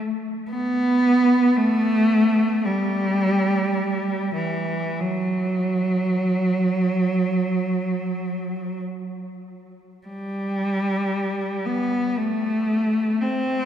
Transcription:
0, 0, Header, 1, 2, 480
1, 0, Start_track
1, 0, Key_signature, 1, "major"
1, 0, Tempo, 500000
1, 13106, End_track
2, 0, Start_track
2, 0, Title_t, "Cello"
2, 0, Program_c, 0, 42
2, 488, Note_on_c, 0, 59, 59
2, 1474, Note_off_c, 0, 59, 0
2, 1504, Note_on_c, 0, 57, 65
2, 2525, Note_off_c, 0, 57, 0
2, 2548, Note_on_c, 0, 55, 50
2, 4175, Note_on_c, 0, 52, 42
2, 4190, Note_off_c, 0, 55, 0
2, 4777, Note_off_c, 0, 52, 0
2, 4797, Note_on_c, 0, 54, 49
2, 8459, Note_off_c, 0, 54, 0
2, 9666, Note_on_c, 0, 55, 49
2, 11154, Note_off_c, 0, 55, 0
2, 11185, Note_on_c, 0, 59, 40
2, 11675, Note_on_c, 0, 57, 45
2, 11687, Note_off_c, 0, 59, 0
2, 12688, Note_on_c, 0, 60, 44
2, 12694, Note_off_c, 0, 57, 0
2, 13106, Note_off_c, 0, 60, 0
2, 13106, End_track
0, 0, End_of_file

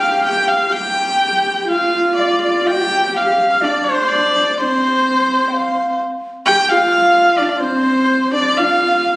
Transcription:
0, 0, Header, 1, 4, 480
1, 0, Start_track
1, 0, Tempo, 964630
1, 363, Time_signature, 2, 2, 24, 8
1, 2290, Tempo, 940439
1, 4617, End_track
2, 0, Start_track
2, 0, Title_t, "Dizi"
2, 0, Program_c, 0, 73
2, 0, Note_on_c, 0, 79, 81
2, 122, Note_off_c, 0, 79, 0
2, 125, Note_on_c, 0, 79, 80
2, 238, Note_on_c, 0, 77, 73
2, 245, Note_off_c, 0, 79, 0
2, 364, Note_on_c, 0, 79, 82
2, 372, Note_off_c, 0, 77, 0
2, 697, Note_off_c, 0, 79, 0
2, 845, Note_on_c, 0, 77, 82
2, 1091, Note_on_c, 0, 74, 70
2, 1098, Note_off_c, 0, 77, 0
2, 1206, Note_off_c, 0, 74, 0
2, 1209, Note_on_c, 0, 74, 72
2, 1330, Note_on_c, 0, 79, 90
2, 1338, Note_off_c, 0, 74, 0
2, 1537, Note_off_c, 0, 79, 0
2, 1537, Note_on_c, 0, 79, 60
2, 1564, Note_on_c, 0, 77, 81
2, 1572, Note_off_c, 0, 79, 0
2, 1796, Note_on_c, 0, 74, 78
2, 1803, Note_off_c, 0, 77, 0
2, 1922, Note_off_c, 0, 74, 0
2, 1929, Note_on_c, 0, 72, 84
2, 2233, Note_off_c, 0, 72, 0
2, 2260, Note_on_c, 0, 74, 59
2, 2286, Note_on_c, 0, 72, 81
2, 2294, Note_off_c, 0, 74, 0
2, 2740, Note_on_c, 0, 79, 61
2, 2747, Note_off_c, 0, 72, 0
2, 2762, Note_on_c, 0, 77, 76
2, 2769, Note_off_c, 0, 79, 0
2, 3005, Note_off_c, 0, 77, 0
2, 3243, Note_on_c, 0, 79, 103
2, 3354, Note_on_c, 0, 77, 107
2, 3362, Note_off_c, 0, 79, 0
2, 3707, Note_on_c, 0, 74, 81
2, 3715, Note_off_c, 0, 77, 0
2, 3766, Note_off_c, 0, 74, 0
2, 3769, Note_on_c, 0, 74, 77
2, 3823, Note_on_c, 0, 72, 94
2, 3831, Note_off_c, 0, 74, 0
2, 4182, Note_off_c, 0, 72, 0
2, 4185, Note_on_c, 0, 74, 81
2, 4314, Note_on_c, 0, 77, 81
2, 4322, Note_off_c, 0, 74, 0
2, 4617, Note_off_c, 0, 77, 0
2, 4617, End_track
3, 0, Start_track
3, 0, Title_t, "Erhu"
3, 0, Program_c, 1, 110
3, 1, Note_on_c, 1, 77, 76
3, 114, Note_off_c, 1, 77, 0
3, 121, Note_on_c, 1, 79, 93
3, 237, Note_on_c, 1, 77, 83
3, 245, Note_off_c, 1, 79, 0
3, 360, Note_on_c, 1, 79, 90
3, 368, Note_off_c, 1, 77, 0
3, 837, Note_off_c, 1, 79, 0
3, 840, Note_on_c, 1, 77, 83
3, 1066, Note_off_c, 1, 77, 0
3, 1069, Note_on_c, 1, 74, 82
3, 1191, Note_off_c, 1, 74, 0
3, 1199, Note_on_c, 1, 74, 83
3, 1328, Note_on_c, 1, 79, 102
3, 1335, Note_off_c, 1, 74, 0
3, 1574, Note_on_c, 1, 77, 87
3, 1581, Note_off_c, 1, 79, 0
3, 1811, Note_on_c, 1, 74, 79
3, 1818, Note_off_c, 1, 77, 0
3, 1911, Note_on_c, 1, 72, 78
3, 1918, Note_off_c, 1, 74, 0
3, 2029, Note_on_c, 1, 74, 89
3, 2037, Note_off_c, 1, 72, 0
3, 2277, Note_on_c, 1, 72, 92
3, 2284, Note_off_c, 1, 74, 0
3, 3004, Note_off_c, 1, 72, 0
3, 3237, Note_on_c, 1, 79, 127
3, 3356, Note_on_c, 1, 77, 115
3, 3364, Note_off_c, 1, 79, 0
3, 3704, Note_on_c, 1, 74, 93
3, 3712, Note_off_c, 1, 77, 0
3, 3730, Note_on_c, 1, 77, 79
3, 3738, Note_off_c, 1, 74, 0
3, 3763, Note_on_c, 1, 74, 87
3, 3770, Note_off_c, 1, 77, 0
3, 3816, Note_off_c, 1, 74, 0
3, 3819, Note_on_c, 1, 72, 95
3, 4171, Note_off_c, 1, 72, 0
3, 4195, Note_on_c, 1, 74, 103
3, 4314, Note_on_c, 1, 77, 101
3, 4322, Note_off_c, 1, 74, 0
3, 4617, Note_off_c, 1, 77, 0
3, 4617, End_track
4, 0, Start_track
4, 0, Title_t, "Horsehead fiddle"
4, 0, Program_c, 2, 110
4, 0, Note_on_c, 2, 67, 91
4, 364, Note_off_c, 2, 67, 0
4, 367, Note_on_c, 2, 67, 83
4, 826, Note_off_c, 2, 67, 0
4, 841, Note_on_c, 2, 65, 80
4, 1320, Note_on_c, 2, 67, 92
4, 1328, Note_off_c, 2, 65, 0
4, 1803, Note_on_c, 2, 62, 84
4, 1810, Note_off_c, 2, 67, 0
4, 2293, Note_on_c, 2, 60, 76
4, 2301, Note_off_c, 2, 62, 0
4, 3012, Note_off_c, 2, 60, 0
4, 3245, Note_on_c, 2, 67, 96
4, 3368, Note_on_c, 2, 65, 102
4, 3376, Note_off_c, 2, 67, 0
4, 3717, Note_on_c, 2, 62, 87
4, 3725, Note_off_c, 2, 65, 0
4, 3822, Note_on_c, 2, 60, 85
4, 3829, Note_off_c, 2, 62, 0
4, 4183, Note_on_c, 2, 62, 86
4, 4191, Note_off_c, 2, 60, 0
4, 4325, Note_on_c, 2, 65, 85
4, 4332, Note_off_c, 2, 62, 0
4, 4617, Note_off_c, 2, 65, 0
4, 4617, End_track
0, 0, End_of_file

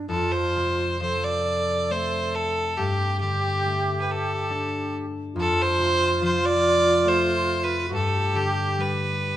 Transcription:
0, 0, Header, 1, 4, 480
1, 0, Start_track
1, 0, Tempo, 906344
1, 51, Time_signature, 3, 2, 24, 8
1, 1011, Tempo, 867052
1, 2451, Tempo, 849858
1, 4371, Tempo, 886263
1, 5161, End_track
2, 0, Start_track
2, 0, Title_t, "Fiddle"
2, 0, Program_c, 0, 110
2, 50, Note_on_c, 0, 69, 72
2, 167, Note_on_c, 0, 72, 83
2, 175, Note_off_c, 0, 69, 0
2, 532, Note_off_c, 0, 72, 0
2, 536, Note_on_c, 0, 72, 85
2, 654, Note_on_c, 0, 74, 88
2, 662, Note_off_c, 0, 72, 0
2, 1013, Note_on_c, 0, 72, 82
2, 1021, Note_off_c, 0, 74, 0
2, 1253, Note_on_c, 0, 69, 78
2, 1261, Note_off_c, 0, 72, 0
2, 1489, Note_on_c, 0, 67, 78
2, 1498, Note_off_c, 0, 69, 0
2, 1726, Note_off_c, 0, 67, 0
2, 1729, Note_on_c, 0, 67, 84
2, 2151, Note_off_c, 0, 67, 0
2, 2176, Note_on_c, 0, 71, 57
2, 2230, Note_on_c, 0, 69, 73
2, 2239, Note_off_c, 0, 71, 0
2, 2699, Note_off_c, 0, 69, 0
2, 2952, Note_on_c, 0, 69, 89
2, 3077, Note_on_c, 0, 72, 102
2, 3086, Note_off_c, 0, 69, 0
2, 3424, Note_off_c, 0, 72, 0
2, 3430, Note_on_c, 0, 72, 90
2, 3547, Note_on_c, 0, 74, 106
2, 3556, Note_off_c, 0, 72, 0
2, 3903, Note_on_c, 0, 72, 88
2, 3912, Note_off_c, 0, 74, 0
2, 4216, Note_on_c, 0, 71, 79
2, 4225, Note_off_c, 0, 72, 0
2, 4375, Note_off_c, 0, 71, 0
2, 4389, Note_on_c, 0, 69, 82
2, 4615, Note_on_c, 0, 67, 81
2, 4623, Note_off_c, 0, 69, 0
2, 4858, Note_on_c, 0, 71, 76
2, 4867, Note_off_c, 0, 67, 0
2, 5161, Note_off_c, 0, 71, 0
2, 5161, End_track
3, 0, Start_track
3, 0, Title_t, "Flute"
3, 0, Program_c, 1, 73
3, 49, Note_on_c, 1, 65, 76
3, 512, Note_off_c, 1, 65, 0
3, 536, Note_on_c, 1, 69, 73
3, 1471, Note_off_c, 1, 69, 0
3, 1493, Note_on_c, 1, 67, 93
3, 2762, Note_off_c, 1, 67, 0
3, 2919, Note_on_c, 1, 65, 100
3, 4343, Note_off_c, 1, 65, 0
3, 4358, Note_on_c, 1, 67, 93
3, 5157, Note_off_c, 1, 67, 0
3, 5161, End_track
4, 0, Start_track
4, 0, Title_t, "Harp"
4, 0, Program_c, 2, 46
4, 0, Note_on_c, 2, 43, 59
4, 0, Note_on_c, 2, 55, 42
4, 0, Note_on_c, 2, 59, 42
4, 0, Note_on_c, 2, 62, 49
4, 46, Note_on_c, 2, 41, 55
4, 77, Note_off_c, 2, 43, 0
4, 77, Note_off_c, 2, 55, 0
4, 294, Note_on_c, 2, 48, 44
4, 326, Note_off_c, 2, 59, 0
4, 533, Note_on_c, 2, 53, 46
4, 556, Note_off_c, 2, 62, 0
4, 1008, Note_on_c, 2, 57, 52
4, 1495, Note_on_c, 2, 43, 62
4, 1520, Note_off_c, 2, 41, 0
4, 1520, Note_off_c, 2, 48, 0
4, 1520, Note_off_c, 2, 53, 0
4, 1734, Note_on_c, 2, 50, 45
4, 1975, Note_off_c, 2, 57, 0
4, 1977, Note_on_c, 2, 57, 49
4, 2447, Note_on_c, 2, 62, 56
4, 2929, Note_on_c, 2, 41, 63
4, 2956, Note_off_c, 2, 43, 0
4, 2956, Note_off_c, 2, 50, 0
4, 3168, Note_on_c, 2, 48, 51
4, 3414, Note_on_c, 2, 53, 57
4, 3848, Note_off_c, 2, 57, 0
4, 3886, Note_on_c, 2, 57, 59
4, 4028, Note_off_c, 2, 62, 0
4, 4372, Note_on_c, 2, 43, 58
4, 4397, Note_off_c, 2, 41, 0
4, 4397, Note_off_c, 2, 48, 0
4, 4397, Note_off_c, 2, 53, 0
4, 4605, Note_on_c, 2, 50, 48
4, 4843, Note_on_c, 2, 55, 50
4, 5161, Note_off_c, 2, 43, 0
4, 5161, Note_off_c, 2, 50, 0
4, 5161, Note_off_c, 2, 55, 0
4, 5161, Note_off_c, 2, 57, 0
4, 5161, End_track
0, 0, End_of_file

